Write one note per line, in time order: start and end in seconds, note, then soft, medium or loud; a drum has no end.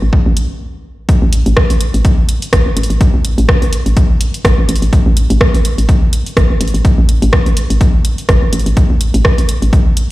0.02 0.10 A1 medium
0.13 kick loud
0.26 0.34 A1 loud
0.37 closed hi-hat medium
1.09 kick loud
1.09 closed hi-hat medium
1.22 1.38 A1 loud
1.33 closed hi-hat loud
1.46 1.54 A1 loud
1.46 closed hi-hat soft
1.57 kick loud
1.57 cross-stick medium
1.70 1.78 A1 medium
1.70 closed hi-hat medium
1.81 closed hi-hat medium
1.94 2.02 A1 medium
1.94 closed hi-hat soft
2.05 kick loud
2.05 closed hi-hat medium
2.29 closed hi-hat medium
2.42 closed hi-hat soft
2.53 2.62 A1 medium
2.53 kick loud
2.53 cross-stick loud
2.53 closed hi-hat medium
2.66 2.74 A1 medium
2.77 2.86 A1 medium
2.77 closed hi-hat medium
2.83 closed hi-hat medium
2.90 2.98 A1 medium
2.90 closed hi-hat soft
3.01 kick loud
3.01 closed hi-hat medium
3.14 3.30 A1 medium
3.25 closed hi-hat loud
3.38 3.45 A1 loud
3.38 closed hi-hat soft
3.49 kick loud
3.49 cross-stick loud
3.62 3.70 A1 medium
3.62 closed hi-hat medium
3.73 closed hi-hat medium
3.86 3.94 A1 medium
3.86 closed hi-hat soft
3.97 kick loud
3.97 closed hi-hat medium
4.21 closed hi-hat loud
4.34 closed hi-hat soft
4.45 4.54 A1 medium
4.45 kick loud
4.45 cross-stick loud
4.45 closed hi-hat medium
4.58 4.66 A1 medium
4.69 4.78 A1 medium
4.69 closed hi-hat medium
4.76 closed hi-hat soft
4.82 4.90 A1 medium
4.82 closed hi-hat soft
4.93 kick loud
4.93 closed hi-hat medium
5.06 5.22 A1 loud
5.17 closed hi-hat loud
5.30 5.38 A1 loud
5.30 closed hi-hat soft
5.41 kick loud
5.41 cross-stick loud
5.54 5.62 A1 medium
5.54 closed hi-hat medium
5.65 closed hi-hat medium
5.78 5.86 A1 medium
5.78 closed hi-hat soft
5.89 kick loud
5.89 closed hi-hat medium
6.13 closed hi-hat loud
6.26 closed hi-hat soft
6.37 6.46 A1 medium
6.37 kick loud
6.37 cross-stick medium
6.37 closed hi-hat soft
6.50 6.58 A1 medium
6.61 6.70 A1 medium
6.61 closed hi-hat medium
6.68 closed hi-hat soft
6.74 6.82 A1 medium
6.74 closed hi-hat soft
6.85 kick loud
6.85 closed hi-hat soft
6.98 7.14 A1 loud
7.09 closed hi-hat loud
7.22 7.30 A1 loud
7.22 closed hi-hat soft
7.33 kick loud
7.33 cross-stick medium
7.46 7.54 A1 medium
7.46 closed hi-hat soft
7.57 closed hi-hat medium
7.70 7.78 A1 medium
7.70 closed hi-hat soft
7.81 kick loud
7.81 closed hi-hat soft
8.05 closed hi-hat medium
8.18 closed hi-hat soft
8.29 8.38 A1 medium
8.29 kick loud
8.29 cross-stick medium
8.29 closed hi-hat soft
8.42 8.50 A1 medium
8.53 8.62 A1 medium
8.53 closed hi-hat medium
8.59 closed hi-hat soft
8.66 8.74 A1 medium
8.66 closed hi-hat soft
8.77 kick loud
8.77 closed hi-hat medium
8.90 9.06 A1 loud
9.01 closed hi-hat medium
9.14 9.22 A1 loud
9.14 closed hi-hat soft
9.25 kick loud
9.25 cross-stick medium
9.38 9.46 A1 medium
9.38 closed hi-hat soft
9.49 closed hi-hat medium
9.62 9.70 A1 medium
9.62 closed hi-hat soft
9.73 kick loud
9.73 closed hi-hat soft
9.97 closed hi-hat medium